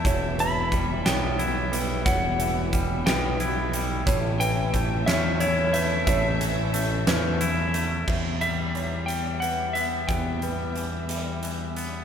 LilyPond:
<<
  \new Staff \with { instrumentName = "Electric slide guitar" } { \time 6/8 \key e \dorian \tempo 4. = 60 r8 b''4 g''4. | fis''4 r8 g''4 r8 | r8 g''4 e''8 cis''8 e''8 | e''2~ e''8 r8 |
r8 e''4 g''8 fis''8 e''8 | g''4 r2 | }
  \new Staff \with { instrumentName = "Felt piano" } { \time 6/8 \key e \dorian cis''8 b'4 cis''4 b'8 | cis''4 r8 b'4 r8 | cis''8 b'4 cis''4 b'8 | cis''4 r8 b'4 r8 |
e''4 cis''4 b'4 | e''8 b'4 e''4 r8 | }
  \new Staff \with { instrumentName = "String section" } { \time 6/8 \key e \dorian <e b g' e''>2.~ | <e b g' e''>2. | <e cis' a' e''>2.~ | <e cis' a' e''>2. |
<e b g' e''>2.~ | <e b g' e''>2. | }
  \new Staff \with { instrumentName = "Clean electric guitar" } { \clef bass \time 6/8 \key e \dorian e,8 e8 g8 b8 e'8 g8 | e,8 e8 g8 b8 e'8 g8 | a,8 e8 a8 cis'8 e'8 a8 | a,8 e8 a8 cis'8 e'8 a8 |
e,8 g8 e8 g8 e8 b8 | e,8 g8 e8 g8 e8 b8 | }
  \new Staff \with { instrumentName = "Fingered electric bass" } { \clef bass \time 6/8 \key e \dorian e,,4. b,,4. | e,,4. b,,4. | a,,4. e,4. | a,,4. e,4. |
e,2. | e,2. | }
  \new DrumStaff \with { instrumentName = "Drums" } \drummode { \time 6/8 <hh bd>8 hh8 <hh bd>8 <hh sn>8 hh8 hh8 | <hh bd>8 hh8 <hh bd>8 <hh sn>8 hh8 hh8 | <hh bd>8 hh8 <hh bd>8 <hh sn>8 hh8 hh8 | <hh bd>8 hh8 hh8 <hh sn>8 hh8 hh8 |
<cymc bd>8 hh8 hh8 hh8 hh8 hh8 | <hh bd>8 hh8 hh8 hh8 hh8 hh8 | }
>>